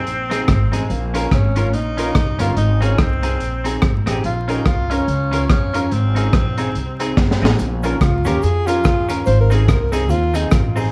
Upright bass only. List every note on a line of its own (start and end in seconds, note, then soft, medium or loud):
0.07 0.42 A#1 medium
0.48 0.69 G#1 medium
0.73 0.87 A1 medium
0.90 1.25 A#1 medium
1.31 1.74 G#1 medium
1.74 2.09 A#1 medium
2.15 2.36 C2 medium
2.40 2.54 G1 loud
2.57 2.92 G#1 medium
2.98 3.40 C2 medium
3.40 3.76 A#1 medium
3.83 4.03 G#1 medium
4.07 4.21 A1 medium
4.24 4.60 A#1 medium
4.66 5.01 C2 medium
5.08 5.43 C#2 medium
5.50 5.85 F2 medium
5.92 6.27 G#1 medium
6.33 6.69 A#1 medium
6.75 7.11 C2 medium
7.17 7.38 G1 medium
7.42 7.56 A1 medium
7.59 7.95 A#1 loud
8.01 8.22 C#2 medium
8.25 8.40 D#2 medium
8.43 8.85 F2 medium
8.85 9.20 D#2 medium
9.27 9.70 G#1 loud
9.68 10.10 C2 medium
10.10 10.46 D#2 medium
10.52 10.88 A1 medium